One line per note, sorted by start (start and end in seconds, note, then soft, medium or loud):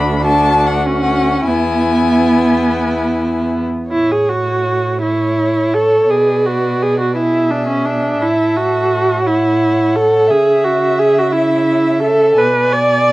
0.00 1.42 D2 medium
0.00 0.21 D4 medium
0.00 0.21 F#4 medium
0.00 0.24 B5 medium
0.24 0.88 D4 medium
0.24 1.44 F#4 medium
0.24 0.68 A5 medium
0.66 1.46 F#5 medium
0.86 1.49 C#4 medium
1.45 3.66 E2 medium
1.45 3.70 B3 medium
1.45 3.65 E4 medium
1.45 3.48 G#5 medium
3.90 6.05 A2 soft
3.90 4.13 E4 medium
3.90 4.98 C#5 soft
4.12 4.30 G#4 soft
4.29 5.02 F#4 medium
5.01 5.75 E4 soft
5.01 6.10 C#5 medium
5.01 6.11 C#5 soft
5.74 6.11 A4 medium
6.08 8.16 B2 soft
6.08 6.47 G#4 medium
6.08 7.17 B4 medium
6.08 7.17 D5 soft
6.46 6.84 F#4 medium
6.82 6.99 G#4 medium
7.00 7.16 F#4 soft
7.15 7.52 E4 soft
7.15 8.23 G#4 soft
7.15 9.25 E5 soft
7.51 7.68 D4 soft
7.69 7.87 C#4 soft
7.86 8.23 D4 medium
8.20 10.31 A2 soft
8.20 8.58 E4 medium
8.20 9.24 A4 soft
8.57 9.28 F#4 medium
9.25 9.97 E4 medium
9.25 10.31 C#5 soft
9.25 10.29 F#5 soft
9.96 10.32 A4 medium
10.27 12.38 C#3 soft
10.27 10.66 G#4 medium
10.27 11.32 E5 soft
10.27 12.37 E5 medium
10.64 11.01 F#4 medium
10.99 11.20 G#4 medium
11.18 11.34 F#4 medium
11.32 12.02 E4 medium
11.32 12.36 E5 soft
12.03 12.40 A4 medium
12.37 13.12 B2 medium
12.37 12.74 B4 medium
12.37 13.12 D5 medium
12.37 13.12 G#5 soft
12.73 13.12 D5 medium